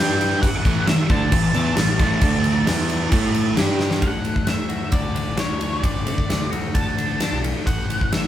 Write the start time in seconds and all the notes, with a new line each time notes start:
Already playing: G3 G5
0.00 G2 D4 G4
0.21 crash
0.42 F#5, kick, crash
0.65 A1 A2 E3 A3, kick, crash
0.87 E5, muted distorted electric guitar stroke, muted picked electric bass stroke, snare, crash
1.09 D2 D3 A3 D4 A5, kick, crash
1.32 A1 A2 E3, kick, crash
1.54 E2 E3 B3 E4, crash
1.77 A1 A2 E3, snare, crash
1.99 A1 A2 E3 A3, kick, crash
2.21 D2 D3 A3 D4, kick, crash
2.44 crash
2.67 E2 E3 B3 E4, snare, crash
2.90 crash
3.12 A2 A3 E4 A4, kick, crash
3.34 crash
3.57 G2 G3 D4 G4, snare, crash
3.80 snare
3.91 snare
4.02 D2 D3 F#5, kick, ride
4.25 A3, ride
4.36 kick
4.47 A3 E5, snare, ride
4.69 F#4, ride
4.92 D2 D4 D5, kick, ride
5.14 D3, ride
5.27 A1
5.37 D4 C#5, snare, ride
5.50 D2
5.59 D2 A3, ride
5.83 A1 D3 D5, kick, ride
6.05 D3 A3, ride
6.18 kick
6.28 D2 A3, snare, ride
6.51 D2 F#4, ride
6.74 D4 A5, kick, ride
6.98 D3, ride
7.20 D4, snare, ride
7.32 B1
7.44 A3, ride
7.66 A1 A2 F#5, kick, ride
7.90 E3, ride
8.01 kick
8.12 A3 E5, snare, ride